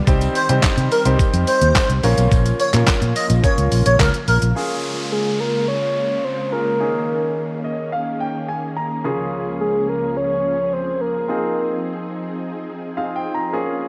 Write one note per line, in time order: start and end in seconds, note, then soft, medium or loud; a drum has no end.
0.00 2.00 G3 medium
0.07 0.26 C2 loud
0.07 2.02 D#3 medium
0.07 0.39 G3 medium
0.07 0.39 C4 medium
0.07 2.02 C4 medium
0.07 0.39 D#4 medium
0.07 2.02 G4 medium
0.07 0.39 G4 medium
0.07 0.39 C5 loud
0.07 kick loud
0.07 tambourine soft
0.07 shaker medium
0.21 closed hi-hat soft
0.21 tambourine soft
0.21 shaker soft
0.35 0.45 C5 medium
0.35 open hi-hat medium
0.35 shaker medium
0.49 0.59 C3 medium
0.49 0.92 G3 medium
0.49 0.92 C4 medium
0.49 0.92 D#4 medium
0.49 0.92 G4 medium
0.49 0.92 C5 medium
0.49 closed hi-hat medium
0.49 shaker medium
0.62 muted fingered electric bass stroke medium
0.62 kick loud
0.62 snare loud
0.62 clap loud
0.62 tambourine medium
0.62 shaker medium
0.77 0.87 C3 loud
0.77 closed hi-hat medium
0.77 shaker medium
0.91 1.01 A#4 medium
0.91 open hi-hat medium
0.91 tambourine soft
0.91 shaker medium
1.05 1.15 C2 medium
1.05 1.90 G3 medium
1.05 1.90 C4 medium
1.05 1.90 D#4 medium
1.05 1.90 G4 medium
1.05 1.90 C5 medium
1.05 closed hi-hat medium
1.05 tambourine soft
1.05 shaker medium
1.19 kick loud
1.19 tambourine medium
1.19 shaker medium
1.33 1.43 F2 loud
1.33 closed hi-hat medium
1.33 shaker medium
1.47 1.87 C5 medium
1.47 open hi-hat medium
1.47 tambourine medium
1.47 shaker medium
1.61 1.71 D#2 medium
1.61 closed hi-hat medium
1.61 shaker medium
1.75 kick loud
1.75 snare medium
1.75 clap loud
1.75 tambourine medium
1.75 shaker medium
1.90 1.99 C2 medium
1.90 closed hi-hat medium
1.90 shaker medium
2.03 2.13 A#1 loud
2.03 4.53 C#3 medium
2.03 4.53 F3 medium
2.03 2.60 A#3 loud
2.03 4.53 A#3 medium
2.03 2.60 C#4 medium
2.03 4.53 F4 medium
2.03 2.60 F4 medium
2.03 2.60 A#4 medium
2.03 2.60 C#5 loud
2.03 open hi-hat medium
2.03 tambourine medium
2.03 shaker medium
2.18 2.27 B1 medium
2.18 closed hi-hat medium
2.18 tambourine soft
2.18 shaker medium
2.31 2.51 A#1 loud
2.31 kick loud
2.31 tambourine medium
2.31 shaker medium
2.46 closed hi-hat soft
2.46 tambourine soft
2.46 shaker soft
2.60 2.69 C#5 medium
2.60 open hi-hat medium
2.60 shaker medium
2.73 2.83 A#2 loud
2.73 3.26 A#3 medium
2.73 3.26 C#4 medium
2.73 3.27 F4 medium
2.73 3.27 A#4 medium
2.73 3.27 C#5 medium
2.73 clap medium
2.73 closed hi-hat medium
2.73 tambourine soft
2.73 shaker medium
2.87 kick loud
2.87 snare medium
2.87 clap loud
2.87 tambourine medium
2.87 shaker medium
3.02 3.11 A#2 loud
3.02 closed hi-hat soft
3.02 shaker medium
3.16 3.25 D#5 medium
3.16 open hi-hat medium
3.16 tambourine soft
3.16 shaker medium
3.30 3.39 A#1 loud
3.30 closed hi-hat medium
3.30 tambourine soft
3.30 shaker medium
3.44 4.28 A#3 medium
3.44 4.28 C#4 medium
3.44 4.28 F4 medium
3.44 4.28 A#4 medium
3.44 3.53 C#5 medium
3.44 4.29 C#5 medium
3.44 kick loud
3.44 tambourine medium
3.44 shaker medium
3.58 3.67 C#2 medium
3.58 closed hi-hat medium
3.58 shaker medium
3.72 3.81 A#1 medium
3.72 open hi-hat medium
3.72 tambourine medium
3.72 shaker medium
3.86 3.95 A#1 medium
3.86 3.96 C#5 medium
3.86 closed hi-hat medium
3.86 tambourine soft
3.86 shaker medium
3.99 4.09 C#2 medium
3.99 4.09 A#4 medium
3.99 kick loud
3.99 snare medium
3.99 clap loud
3.99 tambourine medium
3.99 shaker medium
4.14 closed hi-hat soft
4.14 shaker soft
4.28 4.38 A#1 loud
4.28 4.38 A#4 medium
4.28 open hi-hat medium
4.28 tambourine soft
4.28 shaker medium
4.42 4.52 A#1 medium
4.42 closed hi-hat medium
4.42 shaker medium
4.55 6.78 C#3 medium
4.55 6.78 G#3 medium
4.55 6.48 A#3 medium
4.55 11.25 A#3 medium
4.55 6.48 C#4 medium
4.55 6.78 F4 medium
4.55 6.48 F4 medium
4.55 6.49 G#4 medium
4.55 downlifter medium
5.12 5.42 G#4 medium
5.40 5.68 A#4 medium
5.68 6.26 C#5 loud
6.24 6.52 C5 loud
6.52 6.78 A#3 soft
6.52 6.79 C#4 soft
6.52 6.80 F4 soft
6.52 6.79 G#4 soft
6.52 7.60 A#4 loud
6.80 9.02 D#3 medium
6.80 9.00 A#3 medium
6.80 9.00 C#4 medium
6.80 9.02 C#4 medium
6.80 9.01 D#4 medium
6.80 13.88 G#4 medium
6.80 9.01 G#4 medium
7.64 7.90 D#5 medium
7.92 8.18 F5 medium
8.20 8.46 G5 medium
8.48 8.75 G#5 medium
8.77 9.03 A#5 medium
9.04 11.27 C#2 medium
9.04 11.25 C#3 medium
9.04 13.88 F3 medium
9.04 11.25 A#3 medium
9.04 11.27 C#4 medium
9.04 11.25 C#4 medium
9.04 11.25 F4 medium
9.04 11.25 G#4 medium
9.61 9.90 G#4 medium
9.89 10.18 A#4 loud
10.17 10.74 C#5 loud
10.73 11.02 C5 loud
11.01 12.13 A#4 loud
11.28 12.93 C4 medium
11.28 13.51 C4 medium
11.28 12.94 D#4 medium
11.28 13.51 D#4 medium
11.28 12.94 F4 medium
11.28 12.94 G#4 medium
12.97 13.53 C4 medium
12.97 13.53 D#4 medium
12.97 13.52 F4 soft
12.97 13.52 G#4 medium
12.97 13.14 F5 medium
13.16 13.33 G5 medium
13.35 13.52 A#5 medium
13.53 13.88 A#3 medium
13.53 13.88 C#4 medium
13.53 13.88 F4 medium
13.53 13.88 G#4 medium